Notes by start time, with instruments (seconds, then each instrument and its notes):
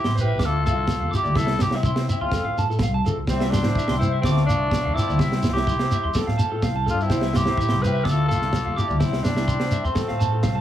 Already playing: trumpet E4, tenor saxophone G4
0.04 upright bass A1, clean electric guitar C6, snare
0.14 nylon-string guitar G3 E4, clean electric guitar C5, shekere
0.20 trumpet G4, tenor saxophone B4
0.27 clean electric guitar E5
0.39 upright bass D2, nylon-string guitar A3 D4 F4, clean electric guitar D6, kick, snare, shekere
0.45 trumpet F4, tenor saxophone A4
0.62 upright bass C2, nylon-string guitar A3 D4 F4, tenor saxophone A4, clean electric guitar F5
0.67 trumpet F4, shekere
0.73 nylon-string guitar F4
0.77 nylon-string guitar D4
0.87 kick, snare, shekere
0.99 upright bass F2, clean electric guitar F5
1.10 nylon-string guitar A3 D4 F4, clean electric guitar D6, shekere
1.14 trumpet E4, tenor saxophone G4
1.24 upright bass D2, clean electric guitar D5, shekere
1.35 upright bass C2, nylon-string guitar G3 C4 E4, tenor saxophone A4, clean electric guitar E5, kick, snare, shekere
1.41 trumpet E4
1.47 snare
1.59 upright bass C2, tenor saxophone G4, snare, shekere
1.65 trumpet E4
1.71 nylon-string guitar C4 E4, clean electric guitar E5, snare
1.75 trumpet C4, tenor saxophone E4
1.83 upright bass C3, clean electric guitar C6, kick, shekere
1.96 clean electric guitar C5, snare
2.08 nylon-string guitar G3 C4 E4, trumpet C4, tenor saxophone E4, clean electric guitar E5, shekere
2.21 upright bass E2, trumpet C4, tenor saxophone F4, clean electric guitar C6
2.31 upright bass F2, nylon-string guitar G3 C4 F4 A4, clean electric guitar A4, kick, snare, shekere
2.44 upright bass A2, clean electric guitar F5
2.54 nylon-string guitar G3 C4 F4 A4, clean electric guitar A5, shekere
2.68 nylon-string guitar C4 F4 A4, clean electric guitar A4, shekere
2.79 upright bass C2, clean electric guitar F5, kick, snare, shekere
2.94 clean electric guitar A5
3.04 upright bass C#2, nylon-string guitar G3 C4 F4 A4, clean electric guitar A4, shekere
3.27 upright bass C2, nylon-string guitar G3 C4 E4, trumpet G3, tenor saxophone C4, clean electric guitar C5, transistor combo organ E5 G5 C6, kick, snare, shekere
3.40 clean electric guitar E5, snare
3.51 trumpet G3, tenor saxophone D4, clean electric guitar C6, snare, shekere
3.62 upright bass A2, nylon-string guitar C4 E4, clean electric guitar C5, snare
3.75 clean electric guitar E5, kick, shekere
3.88 upright bass C2, clean electric guitar C6, snare
3.99 nylon-string guitar G3 C4, trumpet C4, tenor saxophone E4, clean electric guitar C5, shekere
4.03 nylon-string guitar E4
4.13 clean electric guitar E5
4.21 upright bass D2, trumpet A3, nylon-string guitar A3, tenor saxophone C4, transistor combo organ D5 F5 A5, clean electric guitar D6, kick, snare
4.25 nylon-string guitar D4 F4, shekere
4.37 snare
4.46 upright bass C2, trumpet A3, nylon-string guitar A3 D4, tenor saxophone D4, clean electric guitar F5, shekere
4.51 nylon-string guitar F4
4.64 nylon-string guitar D4
4.71 kick, snare, shekere
4.84 upright bass F2, clean electric guitar F5
4.94 nylon-string guitar A3, trumpet C4, tenor saxophone E4, clean electric guitar D6, muted nylon-string guitar stroke, shekere
4.99 nylon-string guitar F4
5.08 upright bass D2, clean electric guitar D5, shekere
5.19 upright bass C2, nylon-string guitar G3 C4 E4, clean electric guitar E5, transistor combo organ E5 G5, kick, snare, shekere
5.24 transistor combo organ C5
5.32 snare
5.43 upright bass C2, snare, shekere
5.53 nylon-string guitar E4, tenor saxophone G4, clean electric guitar E5, snare
5.57 nylon-string guitar C4, trumpet E4
5.67 upright bass C3, clean electric guitar C6, kick, shekere
5.79 clean electric guitar C5, snare
5.91 nylon-string guitar G3 C4 E4, clean electric guitar E5, shekere
6.04 upright bass E2, clean electric guitar C6
6.14 upright bass F2, nylon-string guitar G3 C4 F4 A4, clean electric guitar A4, transistor combo organ A4, kick, snare, shekere
6.18 transistor combo organ F5
6.27 upright bass A2, clean electric guitar F5, snare
6.38 nylon-string guitar G3 C4 F4 A4, clean electric guitar A5, shekere
6.51 nylon-string guitar C4 F4 A4, clean electric guitar A4
6.62 upright bass C2, clean electric guitar F5, kick, snare, shekere
6.76 clean electric guitar A5
6.86 upright bass G2, nylon-string guitar G3 C4 F4 A4, clean electric guitar A4, shekere
6.90 trumpet D4, tenor saxophone F4
7.00 trumpet C4, tenor saxophone E4, shekere
7.09 upright bass C2, nylon-string guitar G3 C4 E4, transistor combo organ C5 E5, clean electric guitar C5, kick, snare, shekere
7.21 clean electric guitar E5, snare
7.33 tenor saxophone G4, clean electric guitar C6, snare, shekere
7.38 trumpet E4
7.45 upright bass A2, nylon-string guitar C4 E4, clean electric guitar C5, snare
7.57 clean electric guitar E5, kick, shekere
7.69 upright bass C2, clean electric guitar C6, snare
7.82 nylon-string guitar G3 C4 E4, tenor saxophone B4, clean electric guitar C5, shekere
7.87 trumpet G4
7.94 clean electric guitar E5
8.04 upright bass D2, nylon-string guitar A3 D4, tenor saxophone A4, transistor combo organ D5 F5 A5, clean electric guitar D6, kick, snare
8.08 nylon-string guitar F4, trumpet F4, shekere
8.28 upright bass C2, nylon-string guitar A3 D4, tenor saxophone A4, clean electric guitar F5, shekere
8.33 nylon-string guitar F4, trumpet F4
8.42 nylon-string guitar D4 F4, snare
8.53 kick, snare, shekere
8.65 upright bass F2, clean electric guitar F5
8.76 nylon-string guitar A3 D4, trumpet E4, tenor saxophone G4, clean electric guitar D6, shekere
8.81 nylon-string guitar F4
8.88 upright bass D2, clean electric guitar D5, shekere
8.99 upright bass C2, nylon-string guitar G3 C4 E4, tenor saxophone E4, transistor combo organ C5 E5 G5, muted clean electric guitar stroke, kick, snare, shekere
9.04 trumpet C4
9.13 snare
9.23 upright bass C2, tenor saxophone D4, snare, shekere
9.27 trumpet G3
9.36 nylon-string guitar E4, clean electric guitar E5, snare, shekere
9.41 nylon-string guitar C4
9.48 upright bass C3, clean electric guitar C6, kick, shekere
9.60 clean electric guitar C5, snare
9.71 nylon-string guitar G3 C4, clean electric guitar E5, shekere
9.76 nylon-string guitar E4
9.84 upright bass E2, tenor saxophone C4, clean electric guitar C6, shekere
9.89 trumpet A3
9.94 upright bass F2, nylon-string guitar G3 C4, transistor combo organ A4 F5, clean electric guitar A4, kick, snare, shekere
9.98 nylon-string guitar F4 A4
10.08 upright bass A2, clean electric guitar F5, snare
10.19 nylon-string guitar G3 F4, clean electric guitar A5, muted nylon-string guitar stroke, shekere
10.32 nylon-string guitar C4 F4 A4, clean electric guitar A4
10.43 upright bass C2, clean electric guitar F5, kick, snare, shekere
10.55 clean electric guitar A5